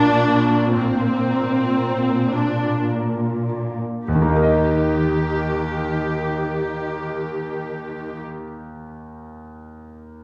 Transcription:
0, 0, Header, 1, 5, 480
1, 0, Start_track
1, 0, Key_signature, -3, "major"
1, 0, Tempo, 966184
1, 376, Time_signature, 6, 3, 24, 8
1, 376, Tempo, 1034483
1, 856, Tempo, 1109057
1, 1336, Tempo, 1171875
1, 1816, Tempo, 1132075
1, 4430, End_track
2, 0, Start_track
2, 0, Title_t, "Harp"
2, 0, Program_c, 0, 46
2, 0, Note_on_c, 0, 46, 43
2, 0, Note_on_c, 0, 58, 35
2, 0, Note_on_c, 0, 68, 32
2, 0, Note_on_c, 0, 70, 36
2, 61, Note_off_c, 0, 68, 0
2, 131, Note_on_c, 0, 62, 36
2, 369, Note_off_c, 0, 46, 0
2, 375, Note_on_c, 0, 46, 40
2, 606, Note_off_c, 0, 58, 0
2, 612, Note_on_c, 0, 58, 32
2, 854, Note_off_c, 0, 70, 0
2, 859, Note_on_c, 0, 70, 33
2, 1093, Note_on_c, 0, 68, 27
2, 1331, Note_off_c, 0, 70, 0
2, 1337, Note_on_c, 0, 70, 29
2, 1504, Note_off_c, 0, 68, 0
2, 1572, Note_off_c, 0, 62, 0
2, 1577, Note_on_c, 0, 62, 26
2, 1815, Note_on_c, 0, 51, 27
2, 1835, Note_off_c, 0, 46, 0
2, 1835, Note_off_c, 0, 62, 0
2, 1840, Note_off_c, 0, 58, 0
2, 1845, Note_on_c, 0, 58, 26
2, 1876, Note_on_c, 0, 63, 27
2, 1899, Note_off_c, 0, 70, 0
2, 1904, Note_on_c, 0, 70, 28
2, 1935, Note_on_c, 0, 75, 25
2, 3823, Note_off_c, 0, 51, 0
2, 3853, Note_off_c, 0, 58, 0
2, 3883, Note_off_c, 0, 63, 0
2, 3912, Note_off_c, 0, 70, 0
2, 3931, Note_off_c, 0, 75, 0
2, 4430, End_track
3, 0, Start_track
3, 0, Title_t, "Viola section"
3, 0, Program_c, 1, 48
3, 0, Note_on_c, 1, 62, 71
3, 378, Note_off_c, 1, 62, 0
3, 380, Note_on_c, 1, 60, 56
3, 1080, Note_off_c, 1, 60, 0
3, 1094, Note_on_c, 1, 62, 44
3, 1337, Note_off_c, 1, 62, 0
3, 1820, Note_on_c, 1, 67, 42
3, 3577, Note_off_c, 1, 67, 0
3, 4430, End_track
4, 0, Start_track
4, 0, Title_t, "Grand piano"
4, 0, Program_c, 2, 0
4, 0, Control_c, 2, 64, 127
4, 0, Note_on_c, 2, 34, 48
4, 0, Note_on_c, 2, 58, 35
4, 357, Note_off_c, 2, 34, 0
4, 384, Control_c, 2, 64, 0
4, 459, Control_c, 2, 64, 127
4, 1816, Note_off_c, 2, 58, 0
4, 1819, Note_on_c, 2, 39, 29
4, 1826, Control_c, 2, 64, 0
4, 1849, Note_on_c, 2, 51, 28
4, 1878, Note_on_c, 2, 58, 31
4, 1908, Note_on_c, 2, 63, 29
4, 1919, Control_c, 2, 64, 127
4, 1939, Note_on_c, 2, 70, 29
4, 1966, Note_on_c, 2, 75, 31
4, 3826, Note_off_c, 2, 39, 0
4, 3857, Note_off_c, 2, 51, 0
4, 3885, Note_off_c, 2, 58, 0
4, 3916, Note_off_c, 2, 63, 0
4, 3933, Note_off_c, 2, 70, 0
4, 3946, Note_off_c, 2, 75, 0
4, 4430, End_track
5, 0, Start_track
5, 0, Title_t, "Cello section"
5, 0, Program_c, 3, 48
5, 0, Note_on_c, 3, 46, 53
5, 1698, Note_off_c, 3, 46, 0
5, 1818, Note_on_c, 3, 51, 38
5, 3575, Note_off_c, 3, 51, 0
5, 4430, End_track
0, 0, End_of_file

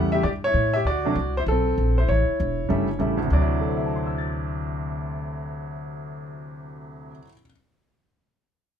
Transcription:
0, 0, Header, 1, 4, 480
1, 0, Start_track
1, 0, Tempo, 307377
1, 1338, Time_signature, 4, 2, 24, 8
1, 13728, End_track
2, 0, Start_track
2, 0, Title_t, "Upright piano"
2, 0, Program_c, 0, 0
2, 0, Note_on_c, 0, 49, 70
2, 0, Note_on_c, 0, 55, 62
2, 0, Note_on_c, 0, 57, 59
2, 0, Note_on_c, 0, 64, 74
2, 188, Note_on_c, 0, 76, 86
2, 227, Note_on_c, 0, 67, 69
2, 329, Note_off_c, 0, 49, 0
2, 332, Note_off_c, 0, 55, 0
2, 339, Note_off_c, 0, 57, 0
2, 342, Note_off_c, 0, 64, 0
2, 365, Note_on_c, 0, 74, 81
2, 377, Note_off_c, 0, 76, 0
2, 379, Note_off_c, 0, 67, 0
2, 409, Note_on_c, 0, 67, 68
2, 443, Note_off_c, 0, 74, 0
2, 487, Note_off_c, 0, 67, 0
2, 691, Note_on_c, 0, 73, 94
2, 729, Note_on_c, 0, 64, 72
2, 1148, Note_on_c, 0, 76, 92
2, 1154, Note_off_c, 0, 64, 0
2, 1181, Note_off_c, 0, 73, 0
2, 1184, Note_on_c, 0, 67, 67
2, 1318, Note_off_c, 0, 76, 0
2, 1337, Note_off_c, 0, 67, 0
2, 1353, Note_on_c, 0, 74, 85
2, 1392, Note_on_c, 0, 66, 62
2, 1639, Note_on_c, 0, 48, 61
2, 1647, Note_on_c, 0, 54, 61
2, 1660, Note_on_c, 0, 57, 56
2, 1661, Note_on_c, 0, 62, 72
2, 1798, Note_off_c, 0, 48, 0
2, 1802, Note_off_c, 0, 54, 0
2, 1808, Note_off_c, 0, 57, 0
2, 1809, Note_off_c, 0, 62, 0
2, 2075, Note_off_c, 0, 74, 0
2, 2096, Note_off_c, 0, 66, 0
2, 2144, Note_on_c, 0, 72, 88
2, 2180, Note_on_c, 0, 64, 64
2, 2218, Note_off_c, 0, 72, 0
2, 2246, Note_off_c, 0, 64, 0
2, 2315, Note_on_c, 0, 69, 85
2, 2364, Note_on_c, 0, 60, 64
2, 3062, Note_off_c, 0, 60, 0
2, 3090, Note_on_c, 0, 72, 78
2, 3113, Note_off_c, 0, 69, 0
2, 3124, Note_on_c, 0, 64, 62
2, 3248, Note_off_c, 0, 72, 0
2, 3258, Note_on_c, 0, 73, 78
2, 3266, Note_off_c, 0, 64, 0
2, 3300, Note_on_c, 0, 64, 60
2, 4194, Note_off_c, 0, 64, 0
2, 4194, Note_on_c, 0, 49, 61
2, 4196, Note_on_c, 0, 55, 56
2, 4216, Note_on_c, 0, 57, 60
2, 4217, Note_on_c, 0, 64, 65
2, 4479, Note_off_c, 0, 49, 0
2, 4480, Note_off_c, 0, 55, 0
2, 4490, Note_off_c, 0, 57, 0
2, 4490, Note_off_c, 0, 64, 0
2, 4633, Note_off_c, 0, 73, 0
2, 4666, Note_on_c, 0, 49, 62
2, 4669, Note_on_c, 0, 55, 53
2, 4689, Note_on_c, 0, 57, 57
2, 4698, Note_on_c, 0, 64, 69
2, 4951, Note_on_c, 0, 38, 68
2, 4954, Note_off_c, 0, 49, 0
2, 4956, Note_off_c, 0, 55, 0
2, 4966, Note_off_c, 0, 57, 0
2, 4970, Note_off_c, 0, 64, 0
2, 5082, Note_on_c, 0, 48, 59
2, 5200, Note_on_c, 0, 74, 71
2, 5213, Note_on_c, 0, 54, 64
2, 5339, Note_on_c, 0, 64, 73
2, 5636, Note_on_c, 0, 69, 41
2, 5756, Note_on_c, 0, 72, 37
2, 5883, Note_on_c, 0, 76, 41
2, 6027, Note_on_c, 0, 81, 36
2, 6178, Note_on_c, 0, 84, 35
2, 6346, Note_on_c, 0, 88, 33
2, 6532, Note_on_c, 0, 93, 34
2, 11065, Note_off_c, 0, 38, 0
2, 11196, Note_off_c, 0, 48, 0
2, 11252, Note_off_c, 0, 74, 0
2, 11286, Note_off_c, 0, 69, 0
2, 11327, Note_off_c, 0, 54, 0
2, 11346, Note_off_c, 0, 72, 0
2, 11410, Note_off_c, 0, 76, 0
2, 11440, Note_off_c, 0, 64, 0
2, 11481, Note_off_c, 0, 81, 0
2, 11557, Note_off_c, 0, 84, 0
2, 11641, Note_off_c, 0, 88, 0
2, 11734, Note_off_c, 0, 93, 0
2, 13728, End_track
3, 0, Start_track
3, 0, Title_t, "Upright bass"
3, 0, Program_c, 1, 32
3, 0, Note_on_c, 1, 40, 92
3, 355, Note_off_c, 1, 40, 0
3, 368, Note_on_c, 1, 43, 80
3, 833, Note_off_c, 1, 43, 0
3, 842, Note_on_c, 1, 45, 84
3, 1309, Note_off_c, 1, 45, 0
3, 1319, Note_on_c, 1, 38, 71
3, 1793, Note_off_c, 1, 38, 0
3, 1803, Note_on_c, 1, 36, 88
3, 2275, Note_off_c, 1, 36, 0
3, 2288, Note_on_c, 1, 35, 90
3, 2757, Note_off_c, 1, 35, 0
3, 2774, Note_on_c, 1, 34, 84
3, 3240, Note_off_c, 1, 34, 0
3, 3253, Note_on_c, 1, 33, 79
3, 3537, Note_off_c, 1, 33, 0
3, 3745, Note_on_c, 1, 28, 92
3, 4206, Note_off_c, 1, 28, 0
3, 4218, Note_on_c, 1, 31, 88
3, 4669, Note_off_c, 1, 31, 0
3, 4679, Note_on_c, 1, 33, 79
3, 5151, Note_off_c, 1, 33, 0
3, 5159, Note_on_c, 1, 38, 83
3, 11211, Note_off_c, 1, 38, 0
3, 13728, End_track
4, 0, Start_track
4, 0, Title_t, "Muted upright bass strokes"
4, 3571, Note_on_c, 9, 29, 38
4, 3727, Note_off_c, 9, 29, 0
4, 13728, End_track
0, 0, End_of_file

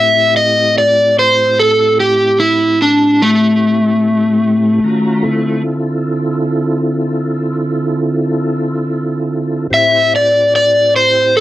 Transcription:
0, 0, Header, 1, 3, 480
1, 0, Start_track
1, 0, Key_signature, 0, "minor"
1, 0, Tempo, 815217
1, 2844, Time_signature, 12, 3, 24, 8
1, 6714, End_track
2, 0, Start_track
2, 0, Title_t, "Electric slide guitar"
2, 0, Program_c, 0, 29
2, 0, Note_on_c, 0, 76, 80
2, 205, Note_off_c, 0, 76, 0
2, 215, Note_on_c, 0, 75, 69
2, 441, Note_off_c, 0, 75, 0
2, 460, Note_on_c, 0, 74, 76
2, 684, Note_off_c, 0, 74, 0
2, 701, Note_on_c, 0, 72, 68
2, 925, Note_off_c, 0, 72, 0
2, 938, Note_on_c, 0, 69, 69
2, 1164, Note_off_c, 0, 69, 0
2, 1177, Note_on_c, 0, 67, 73
2, 1404, Note_off_c, 0, 67, 0
2, 1412, Note_on_c, 0, 64, 70
2, 1641, Note_off_c, 0, 64, 0
2, 1660, Note_on_c, 0, 62, 72
2, 1885, Note_off_c, 0, 62, 0
2, 1897, Note_on_c, 0, 57, 87
2, 3307, Note_off_c, 0, 57, 0
2, 5734, Note_on_c, 0, 76, 83
2, 5959, Note_off_c, 0, 76, 0
2, 5980, Note_on_c, 0, 74, 78
2, 6202, Note_off_c, 0, 74, 0
2, 6216, Note_on_c, 0, 74, 91
2, 6439, Note_off_c, 0, 74, 0
2, 6454, Note_on_c, 0, 72, 72
2, 6678, Note_off_c, 0, 72, 0
2, 6693, Note_on_c, 0, 69, 81
2, 6714, Note_off_c, 0, 69, 0
2, 6714, End_track
3, 0, Start_track
3, 0, Title_t, "Tonewheel organ"
3, 0, Program_c, 1, 16
3, 0, Note_on_c, 1, 45, 63
3, 0, Note_on_c, 1, 57, 62
3, 0, Note_on_c, 1, 60, 61
3, 0, Note_on_c, 1, 64, 61
3, 0, Note_on_c, 1, 67, 59
3, 2825, Note_off_c, 1, 57, 0
3, 2826, Note_off_c, 1, 45, 0
3, 2826, Note_off_c, 1, 60, 0
3, 2827, Note_off_c, 1, 64, 0
3, 2827, Note_off_c, 1, 67, 0
3, 2850, Note_on_c, 1, 82, 62
3, 2852, Note_on_c, 1, 51, 54
3, 2853, Note_on_c, 1, 66, 57
3, 2854, Note_on_c, 1, 65, 59
3, 2856, Note_on_c, 1, 61, 63
3, 3070, Note_off_c, 1, 65, 0
3, 3077, Note_on_c, 1, 65, 68
3, 3078, Note_on_c, 1, 69, 64
3, 3079, Note_on_c, 1, 60, 64
3, 3082, Note_on_c, 1, 64, 61
3, 3085, Note_on_c, 1, 50, 59
3, 3087, Note_off_c, 1, 82, 0
3, 3088, Note_off_c, 1, 51, 0
3, 3089, Note_off_c, 1, 66, 0
3, 3090, Note_off_c, 1, 61, 0
3, 5693, Note_off_c, 1, 60, 0
3, 5693, Note_off_c, 1, 65, 0
3, 5693, Note_off_c, 1, 69, 0
3, 5695, Note_off_c, 1, 64, 0
3, 5696, Note_off_c, 1, 50, 0
3, 5714, Note_on_c, 1, 72, 66
3, 5715, Note_on_c, 1, 64, 60
3, 5716, Note_on_c, 1, 67, 65
3, 5718, Note_on_c, 1, 45, 69
3, 5719, Note_on_c, 1, 60, 62
3, 6714, Note_off_c, 1, 45, 0
3, 6714, Note_off_c, 1, 60, 0
3, 6714, Note_off_c, 1, 64, 0
3, 6714, Note_off_c, 1, 67, 0
3, 6714, Note_off_c, 1, 72, 0
3, 6714, End_track
0, 0, End_of_file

